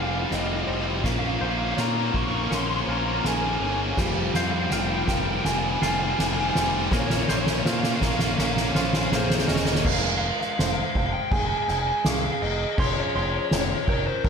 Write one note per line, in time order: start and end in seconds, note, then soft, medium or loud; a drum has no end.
0.00 0.25 F1 medium
0.00 0.71 F3 medium
0.00 0.11 F3 soft
0.00 1.02 G3 soft
0.00 0.11 G3 soft
0.00 1.78 F4 medium
0.00 9.82 F4 soft
0.00 1.08 C5 medium
0.00 0.07 F5 medium
0.00 0.66 G#5 medium
0.08 0.18 G3 medium
0.08 0.16 F5 medium
0.13 0.19 F3 medium
0.13 0.23 F5 medium
0.19 0.27 F3 soft
0.19 0.27 G3 medium
0.23 0.35 F3 medium
0.23 0.34 G3 medium
0.23 0.31 F5 medium
0.31 0.63 F1 medium
0.31 0.42 G3 medium
0.31 0.38 D#5 medium
0.31 snare medium
0.31 ride medium
0.35 0.43 F3 soft
0.35 0.46 D#5 medium
0.42 0.50 F3 soft
0.42 0.50 G3 medium
0.42 0.53 D#5 medium
0.51 0.57 F3 soft
0.51 0.58 G3 medium
0.51 0.61 D#5 medium
0.58 0.66 F3 soft
0.58 0.66 G3 medium
0.62 0.68 D#5 medium
0.66 1.04 F1 medium
0.66 0.74 F3 soft
0.66 0.74 G3 medium
0.66 1.04 G3 medium
0.66 1.54 C5 medium
0.66 0.75 D#5 medium
0.66 ride medium
0.74 0.82 F3 medium
0.74 0.81 G3 medium
0.74 0.83 D#5 medium
0.81 0.89 F3 soft
0.81 0.89 G3 soft
0.89 0.97 F3 soft
0.89 0.97 G3 medium
0.97 1.05 F3 soft
0.97 1.04 G3 soft
1.04 1.36 A#1 medium
1.04 2.88 A#2 medium
1.04 3.95 A#3 medium
1.04 1.12 A#3 medium
1.04 3.95 C#4 medium
1.04 1.11 C#4 medium
1.04 1.11 F5 medium
1.04 kick loud
1.04 snare medium
1.04 ride medium
1.11 1.20 A#3 medium
1.11 1.19 C#4 medium
1.11 1.18 F5 medium
1.19 1.27 A#3 medium
1.19 1.26 C#4 medium
1.19 1.26 F5 medium
1.27 1.35 A#3 medium
1.27 1.35 C#4 medium
1.27 1.34 F5 medium
1.34 1.42 A#3 medium
1.34 1.42 C#4 medium
1.34 1.42 F5 medium
1.40 1.73 A#1 medium
1.40 1.50 A#3 medium
1.40 1.50 C#4 soft
1.40 3.28 C5 medium
1.40 1.49 F5 medium
1.40 ride medium
1.50 1.58 A#3 medium
1.50 1.58 C#4 medium
1.50 1.57 F5 medium
1.57 1.66 A#3 soft
1.57 1.66 C#4 medium
1.57 1.65 F5 medium
1.66 1.73 A#3 medium
1.66 1.74 C#4 medium
1.66 1.72 F5 medium
1.73 1.81 A#3 medium
1.73 1.82 C#4 medium
1.73 1.79 F5 medium
1.77 2.09 A#2 medium
1.77 2.88 F4 medium
1.77 2.50 C#5 medium
1.77 1.88 A#5 medium
1.77 snare medium
1.77 ride medium
1.81 1.89 A#3 medium
1.81 1.89 C#4 medium
1.89 1.97 A#3 medium
1.89 1.97 C#4 medium
1.89 1.96 A#5 medium
1.96 2.04 A#3 medium
1.96 2.04 C#4 medium
1.96 2.05 A#5 medium
2.04 2.12 A#3 medium
2.04 2.12 C#4 medium
2.04 2.14 A#5 medium
2.13 2.46 A#1 medium
2.13 2.20 A#3 medium
2.13 3.24 A#3 medium
2.13 2.21 C#4 medium
2.13 2.24 C#6 medium
2.13 kick medium
2.13 ride medium
2.20 2.27 A#3 medium
2.20 2.27 C#4 medium
2.20 2.31 C#6 medium
2.28 2.35 A#3 medium
2.28 2.35 C#4 medium
2.28 2.38 C#6 medium
2.35 2.43 A#3 medium
2.35 2.43 C#4 medium
2.35 2.45 C#6 medium
2.43 2.51 A#3 medium
2.43 2.51 C#4 medium
2.43 2.52 C#6 medium
2.51 2.83 A#1 medium
2.51 2.58 A#3 medium
2.51 3.60 C#4 medium
2.51 2.59 C#4 medium
2.51 2.86 A#4 medium
2.51 2.62 C6 loud
2.51 snare medium
2.51 ride medium
2.59 2.67 A#3 medium
2.59 2.66 C#4 medium
2.59 2.69 C6 medium
2.67 2.75 A#3 medium
2.67 2.74 C#4 medium
2.67 2.76 C6 medium
2.74 2.82 A#3 medium
2.74 2.82 C#4 medium
2.74 2.83 C6 medium
2.82 2.90 A#3 medium
2.82 2.90 C#4 medium
2.82 2.90 C6 medium
2.87 3.19 A#1 medium
2.87 2.98 A#3 medium
2.87 2.97 C#4 medium
2.87 4.72 F4 medium
2.87 5.08 C5 medium
2.87 2.98 A#5 medium
2.87 ride medium
2.97 3.05 A#3 medium
2.97 3.05 C#4 medium
2.97 3.05 A#5 medium
3.05 3.13 A#3 medium
3.05 3.13 C#4 medium
3.05 3.12 A#5 medium
3.12 3.20 A#3 medium
3.12 3.21 C#4 medium
3.12 3.19 A#5 medium
3.20 3.28 A#3 medium
3.20 3.29 C#4 medium
3.20 3.27 A#5 medium
3.24 3.56 A#1 medium
3.24 3.98 A#3 medium
3.24 3.98 G#4 medium
3.24 3.34 G#5 medium
3.24 snare medium
3.24 ride medium
3.28 3.36 A#3 medium
3.28 3.36 C#4 medium
3.35 3.43 A#3 medium
3.35 3.44 C#4 medium
3.35 3.42 G#5 medium
3.42 3.51 A#3 medium
3.42 3.51 C#4 soft
3.42 3.49 G#5 medium
3.49 3.59 A#3 medium
3.49 3.59 C#4 medium
3.49 3.56 G#5 medium
3.56 3.67 A#3 medium
3.56 3.63 G#5 medium
3.60 3.92 G1 medium
3.60 3.67 C#4 medium
3.60 3.98 C#4 medium
3.60 3.69 G#5 medium
3.60 ride medium
3.67 3.75 A#3 medium
3.67 3.74 C#4 medium
3.67 3.77 G#5 medium
3.75 3.83 A#3 soft
3.75 3.82 C#4 soft
3.83 3.90 A#3 medium
3.83 3.89 C#4 medium
3.89 3.97 A#3 soft
3.89 3.97 C#4 soft
3.97 4.29 F1 medium
3.97 4.04 F3 medium
3.97 6.59 F3 medium
3.97 4.06 G3 medium
3.97 6.89 G3 medium
3.97 4.72 G4 medium
3.97 kick loud
3.97 snare medium
3.97 crash medium
4.05 4.12 F3 medium
4.05 4.12 G3 medium
4.12 4.20 F3 medium
4.12 4.20 G3 medium
4.20 4.27 F3 medium
4.20 4.28 G3 medium
4.28 4.35 F3 medium
4.28 4.36 G3 medium
4.34 4.66 F2 medium
4.34 4.43 F3 medium
4.34 4.44 G3 medium
4.34 6.96 C5 medium
4.34 4.43 F5 medium
4.34 snare medium
4.34 ride medium
4.44 4.51 F3 medium
4.44 4.51 G3 medium
4.44 4.51 F5 medium
4.51 4.59 F3 medium
4.51 4.59 G3 medium
4.51 4.60 F5 medium
4.59 4.66 F3 medium
4.59 4.67 G3 medium
4.59 4.69 F5 medium
4.66 4.73 F3 medium
4.66 4.75 G3 medium
4.66 snare medium
4.66 ride medium
4.71 5.03 F1 medium
4.71 4.81 F3 medium
4.71 5.82 F4 medium
4.71 4.78 G5 loud
4.75 4.82 G3 medium
4.79 4.89 F3 medium
4.79 4.90 G3 medium
4.79 4.86 G5 medium
4.87 4.97 F3 medium
4.87 4.94 G5 medium
4.91 4.98 G3 medium
4.91 5.01 G5 medium
4.98 5.05 F3 medium
4.98 5.05 G3 medium
4.98 5.08 G5 medium
5.05 5.39 F1 medium
5.05 5.12 F3 medium
5.05 5.14 G3 medium
5.05 5.81 A#4 medium
5.05 5.16 G5 medium
5.05 kick medium
5.05 snare medium
5.05 ride medium
5.12 5.20 F3 medium
5.12 5.21 G3 medium
5.17 5.28 G3 medium
5.17 5.23 G5 medium
5.21 5.28 F3 medium
5.21 5.31 G5 medium
5.28 5.36 F3 medium
5.28 5.36 G3 medium
5.28 5.39 G5 medium
5.36 5.44 F3 medium
5.36 5.44 G3 medium
5.36 5.44 G5 medium
5.44 5.77 F1 medium
5.44 5.51 F3 medium
5.44 5.53 G3 medium
5.44 5.52 G#5 medium
5.44 snare medium
5.44 ride medium
5.52 5.59 F3 medium
5.52 5.59 G3 medium
5.52 5.60 G#5 medium
5.59 5.67 F3 medium
5.59 5.67 G3 medium
5.59 5.69 G#5 medium
5.68 5.75 F3 medium
5.68 5.75 G3 medium
5.68 5.77 G#5 medium
5.75 5.82 F3 medium
5.75 5.83 G3 medium
5.75 5.85 G#5 medium
5.81 6.13 F1 medium
5.81 5.89 F3 medium
5.81 5.91 G3 medium
5.81 7.66 F4 medium
5.81 6.55 G#5 medium
5.81 snare medium
5.81 ride medium
5.86 5.92 G#5 medium
5.90 5.97 F3 medium
5.90 5.99 G3 medium
5.90 6.00 G#5 medium
5.98 6.05 F3 medium
5.98 6.06 G3 medium
5.98 6.09 G#5 medium
6.05 6.13 F3 medium
6.05 6.14 G3 medium
6.10 6.22 F3 medium
6.10 6.18 G#5 medium
6.15 6.22 G3 medium
6.15 6.26 G#5 loud
6.19 6.50 F1 medium
6.19 6.29 F3 medium
6.19 6.29 G3 medium
6.19 snare medium
6.19 ride medium
6.27 6.36 F3 medium
6.27 6.36 G3 medium
6.27 6.33 G#5 medium
6.34 6.44 F3 medium
6.34 6.45 G3 medium
6.34 6.40 G#5 loud
6.40 6.48 G#5 medium
6.45 6.52 F3 medium
6.45 6.53 G3 medium
6.45 6.55 G#5 medium
6.52 6.60 F3 soft
6.52 6.60 G3 medium
6.52 6.92 G3 medium
6.52 7.42 C5 medium
6.52 6.61 G#5 medium
6.52 snare loud
6.52 ride medium
6.57 6.87 F1 medium
6.57 6.67 F3 medium
6.57 6.68 G3 medium
6.62 6.69 G#5 medium
6.67 6.75 F3 soft
6.67 6.75 G3 medium
6.75 6.83 F3 medium
6.75 6.83 G3 medium
6.84 6.92 F3 medium
6.84 6.91 G3 medium
6.91 7.23 A#1 medium
6.91 8.76 A#2 medium
6.91 6.99 A#3 medium
6.91 9.83 A#3 medium
6.91 7.00 C#4 medium
6.91 9.83 C#4 medium
6.91 9.83 A#4 medium
6.91 6.99 C#5 medium
6.91 kick loud
6.91 snare medium
6.99 7.06 A#3 medium
6.99 7.08 C#4 medium
6.99 7.07 C#5 medium
7.07 7.14 A#3 medium
7.07 7.15 C#4 medium
7.07 7.14 C#5 medium
7.07 snare medium
7.15 7.23 A#3 medium
7.15 7.22 C#4 medium
7.15 7.22 C#5 medium
7.22 7.30 A#3 medium
7.22 7.30 C#4 medium
7.22 7.30 C#5 medium
7.28 7.61 A#1 medium
7.28 7.38 A#3 medium
7.28 7.38 C#4 medium
7.28 9.12 C5 medium
7.28 7.37 C#5 medium
7.28 snare loud
7.37 7.45 A#3 medium
7.37 7.46 C#4 medium
7.37 7.44 C#5 medium
7.45 7.53 A#3 medium
7.45 7.53 C#4 medium
7.45 7.52 C#5 medium
7.45 snare loud
7.53 7.60 A#3 medium
7.53 7.61 C#4 medium
7.53 7.59 C#5 medium
7.59 7.68 A#3 medium
7.59 7.69 C#4 medium
7.59 7.67 C#5 medium
7.65 7.97 A#2 loud
7.65 7.76 A#3 medium
7.65 8.74 F4 medium
7.65 8.38 C5 medium
7.65 7.73 F5 loud
7.65 snare loud
7.70 7.77 C#4 medium
7.70 7.80 F5 medium
7.77 7.85 A#3 medium
7.77 7.85 C#4 medium
7.77 7.88 F5 medium
7.83 7.92 A#3 medium
7.83 7.93 C#4 medium
7.83 snare loud
7.88 7.95 F5 medium
7.93 7.99 A#3 medium
7.93 8.01 C#4 medium
7.93 8.03 F5 medium
8.00 8.33 A#1 medium
8.00 8.07 A#3 medium
8.00 9.11 A#3 medium
8.00 8.08 C#4 medium
8.00 kick medium
8.00 snare loud
8.04 8.15 A#3 medium
8.04 8.15 C#4 medium
8.04 8.11 F5 medium
8.11 8.22 A#3 medium
8.11 8.19 F5 medium
8.16 8.23 C#4 medium
8.16 8.27 F5 medium
8.16 snare loud
8.22 8.30 A#3 medium
8.22 8.31 C#4 medium
8.27 8.35 F5 medium
8.31 8.38 A#3 medium
8.31 8.39 C#4 medium
8.31 8.42 F5 medium
8.38 8.70 A#1 medium
8.38 8.46 A#3 medium
8.38 9.49 C#4 medium
8.38 8.46 C#4 medium
8.38 8.75 A#4 medium
8.38 snare loud
8.43 8.53 A#3 medium
8.43 8.54 C#4 medium
8.43 8.50 F5 medium
8.51 8.61 A#3 medium
8.51 8.56 F5 medium
8.55 8.62 C#4 medium
8.55 8.63 F5 medium
8.55 snare loud
8.62 8.67 A#3 medium
8.62 8.70 C#4 medium
8.62 8.71 F5 medium
8.68 8.76 A#3 medium
8.68 8.76 C#4 medium
8.68 8.78 F5 medium
8.75 9.07 A#1 medium
8.75 8.85 A#3 medium
8.75 8.84 C#4 medium
8.75 9.85 F4 medium
8.75 9.12 C5 medium
8.75 8.86 F5 medium
8.75 snare loud
8.85 8.92 A#3 medium
8.85 8.93 C#4 medium
8.85 8.94 F5 medium
8.92 9.00 A#3 medium
8.92 9.00 C#4 medium
8.92 9.01 F5 medium
8.92 snare loud
9.01 9.07 A#3 medium
9.01 9.08 C#4 medium
9.01 9.09 F5 medium
9.07 9.15 A#3 medium
9.07 9.15 C#4 medium
9.12 9.43 A#1 loud
9.12 9.85 A#3 medium
9.12 9.23 A#3 medium
9.12 9.23 C#4 medium
9.12 9.85 G#4 medium
9.12 9.19 C5 medium
9.12 snare loud
9.20 9.30 C#4 medium
9.20 9.27 C5 medium
9.24 9.30 A#3 medium
9.24 9.35 C5 medium
9.30 9.38 A#3 medium
9.30 9.38 C#4 medium
9.30 snare loud
9.36 9.46 A#3 medium
9.36 9.42 C5 medium
9.36 snare loud
9.40 9.47 C#4 medium
9.40 9.48 C5 medium
9.47 9.80 E1 medium
9.47 9.54 A#3 medium
9.47 9.54 C#4 medium
9.47 9.86 C#4 medium
9.47 9.54 D#5 loud
9.47 snare loud
9.54 9.62 A#3 medium
9.54 9.62 C#4 medium
9.54 9.63 D#5 medium
9.54 snare loud
9.62 9.70 A#3 medium
9.62 9.70 C#4 medium
9.62 9.74 D#5 medium
9.62 snare loud
9.70 9.77 A#3 medium
9.70 9.77 C#4 medium
9.70 9.83 D#5 medium
9.75 9.85 A#3 medium
9.75 9.85 C#4 medium
9.75 snare loud
9.84 10.29 F1 loud
9.84 12.76 G#3 medium
9.84 12.76 F4 medium
9.84 10.59 A#4 medium
9.84 9.93 F5 loud
9.84 kick loud
9.84 crash loud
9.84 crash medium
9.94 10.02 F5 medium
10.02 10.09 F5 medium
10.09 10.17 F5 medium
10.17 10.25 F5 medium
10.22 crash medium
10.26 10.33 F5 medium
10.34 10.40 F5 medium
10.40 10.48 F5 medium
10.40 snare soft
10.50 10.57 F5 medium
10.58 10.81 F1 loud
10.58 12.79 C5 medium
10.58 10.66 F5 loud
10.58 snare loud
10.58 crash medium
10.67 10.74 F5 medium
10.75 10.82 F5 medium
10.83 10.90 F5 medium
10.91 10.98 F5 loud
10.95 11.18 F1 medium
10.95 11.06 F5 medium
10.95 kick medium
10.95 crash medium
11.06 11.13 F5 medium
11.13 11.32 G5 medium
11.31 11.54 F1 loud
11.31 12.05 G#4 medium
11.31 11.40 G#5 loud
11.31 kick loud
11.31 crash medium
11.40 11.47 G#5 medium
11.47 11.55 G#5 medium
11.57 11.62 G#5 medium
11.63 11.70 G#5 medium
11.68 11.91 F1 medium
11.68 11.78 G#5 medium
11.68 snare soft
11.68 crash medium
11.78 11.86 G#5 medium
11.88 12.06 G#5 loud
12.05 12.28 C2 medium
12.05 13.92 G#4 medium
12.05 12.14 F5 loud
12.05 snare loud
12.05 crash medium
12.14 12.23 F5 medium
12.23 12.31 F5 medium
12.32 12.40 F5 medium
12.42 12.64 F1 medium
12.42 12.50 D#5 loud
12.42 crash medium
12.50 12.57 D#5 medium
12.57 12.64 D#5 medium
12.64 12.71 D#5 medium
12.73 12.80 D#5 medium
12.77 13.00 F1 loud
12.77 14.29 F3 medium
12.77 14.29 C#4 medium
12.77 12.85 C#5 loud
12.77 13.15 C6 medium
12.77 kick loud
12.77 crash loud
12.87 12.93 C#5 medium
12.93 13.00 C#5 medium
13.00 13.07 C#5 medium
13.07 13.14 C#5 medium
13.15 13.38 F1 medium
13.15 13.22 C#5 medium
13.15 13.92 C6 medium
13.15 crash medium
13.23 13.30 C#5 loud
13.30 13.36 C#5 medium
13.36 13.44 C#5 medium
13.45 13.53 C#5 medium
13.51 13.74 F1 loud
13.51 13.61 C#5 loud
13.51 snare loud
13.51 crash medium
13.61 13.69 C#5 medium
13.69 13.77 C#5 loud
13.78 13.84 C#5 medium
13.84 14.10 F1 loud
13.84 13.92 C#5 medium
13.84 kick medium
13.84 crash medium
13.89 14.29 A#4 medium
13.93 14.01 C#5 medium
14.01 14.07 C#5 medium
14.07 14.25 C5 medium
14.24 14.29 G#1 loud
14.24 14.29 A#4 loud
14.24 kick loud
14.24 crash medium